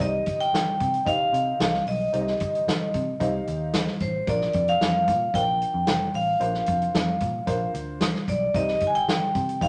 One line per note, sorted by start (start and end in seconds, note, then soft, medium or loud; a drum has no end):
0.00 0.19 C2 medium
0.00 0.67 D#4 medium
0.00 0.68 G4 medium
0.00 0.68 C5 medium
0.00 0.68 D#5 medium
0.00 0.38 D#5 medium
0.00 kick loud
0.00 closed hi-hat medium
0.26 0.46 G1 medium
0.26 kick medium
0.26 closed hi-hat medium
0.41 1.09 G5 loud
0.41 closed hi-hat soft
0.53 0.73 G1 medium
0.53 snare medium
0.53 closed hi-hat medium
0.80 1.00 C3 loud
0.80 kick medium
0.80 closed hi-hat medium
0.94 closed hi-hat soft
1.05 1.26 G1 medium
1.05 1.74 D#4 medium
1.05 1.74 G4 medium
1.05 1.74 C5 medium
1.05 1.74 D#5 medium
1.05 1.83 F5 loud
1.05 kick medium
1.05 closed hi-hat medium
1.33 1.52 C3 medium
1.33 closed hi-hat medium
1.60 1.79 C2 medium
1.60 snare loud
1.60 closed hi-hat medium
1.74 snare soft
1.87 2.06 B1 medium
1.87 3.44 D#5 medium
1.87 open hi-hat medium
2.13 2.33 C2 loud
2.13 2.81 D#4 medium
2.13 2.81 G4 medium
2.13 2.81 C5 medium
2.13 2.20 D5 medium
2.13 closed hi-hat medium
2.20 2.85 D#5 medium
2.27 snare soft
2.40 2.60 G1 medium
2.40 kick medium
2.40 closed hi-hat medium
2.55 closed hi-hat soft
2.67 2.87 G1 medium
2.67 snare loud
2.67 closed hi-hat medium
2.94 3.14 C3 medium
2.94 kick medium
2.94 closed hi-hat medium
3.20 3.40 C2 medium
3.20 3.88 D#4 medium
3.20 3.88 G4 medium
3.20 3.88 C5 medium
3.20 3.88 F5 medium
3.20 kick medium
3.20 closed hi-hat medium
3.47 3.87 D#2 medium
3.47 closed hi-hat medium
3.73 snare loud
3.73 closed hi-hat medium
3.87 snare soft
4.00 4.20 A1 medium
4.00 4.26 C5 medium
4.00 kick medium
4.00 closed hi-hat medium
4.27 4.47 A#1 loud
4.27 4.95 D4 medium
4.27 4.95 F4 medium
4.27 4.95 A#4 medium
4.27 4.95 D5 medium
4.27 4.70 D5 loud
4.27 kick loud
4.27 closed hi-hat medium
4.41 snare soft
4.53 4.74 F2 medium
4.53 kick medium
4.53 closed hi-hat medium
4.68 5.37 F5 loud
4.68 closed hi-hat soft
4.81 5.09 F2 medium
4.81 snare loud
4.81 closed hi-hat medium
5.08 5.27 A#2 loud
5.08 kick medium
5.08 closed hi-hat medium
5.33 5.63 A#1 loud
5.33 6.01 D4 medium
5.33 6.02 F4 medium
5.33 6.02 A#4 medium
5.33 5.41 C5 medium
5.33 6.11 G5 loud
5.33 kick loud
5.33 closed hi-hat medium
5.41 6.05 D5 medium
5.62 closed hi-hat medium
5.74 5.84 F2 medium
5.87 6.07 F1 medium
5.87 snare loud
5.87 closed hi-hat loud
6.14 6.34 A1 medium
6.14 7.71 F5 medium
6.14 open hi-hat medium
6.39 6.60 A#1 loud
6.39 7.08 D4 medium
6.39 7.08 F4 medium
6.39 7.08 A#4 medium
6.39 7.08 C5 medium
6.39 closed hi-hat medium
6.54 snare soft
6.66 6.87 F2 medium
6.66 kick medium
6.66 closed hi-hat medium
6.82 closed hi-hat soft
6.95 7.14 F2 medium
6.95 snare loud
6.95 closed hi-hat medium
7.20 7.41 A#2 medium
7.20 kick medium
7.20 closed hi-hat medium
7.46 7.67 A#1 loud
7.46 8.15 D4 medium
7.46 8.15 F4 medium
7.46 8.15 A#4 medium
7.46 8.15 C5 medium
7.46 kick medium
7.46 closed hi-hat medium
7.74 8.13 D2 medium
7.74 closed hi-hat medium
8.01 snare loud
8.01 closed hi-hat medium
8.15 snare soft
8.28 8.47 B1 medium
8.28 8.56 D5 medium
8.28 kick medium
8.28 closed hi-hat medium
8.54 8.74 C2 loud
8.54 9.22 D#4 medium
8.54 9.22 G4 medium
8.54 9.23 C5 medium
8.54 9.23 D#5 medium
8.54 8.86 D#5 loud
8.54 kick loud
8.54 closed hi-hat medium
8.68 snare soft
8.80 9.01 G1 medium
8.80 kick medium
8.80 closed hi-hat medium
8.87 8.94 G#5 medium
8.95 9.64 G5 loud
8.95 closed hi-hat soft
9.08 9.28 G1 medium
9.08 snare loud
9.08 closed hi-hat medium
9.35 9.63 C3 medium
9.35 kick medium
9.35 closed hi-hat medium
9.49 closed hi-hat soft
9.61 9.68 C2 medium
9.61 9.68 D#4 medium
9.61 9.68 G4 medium
9.61 9.68 C5 medium
9.61 9.68 F5 medium
9.61 kick medium
9.61 closed hi-hat medium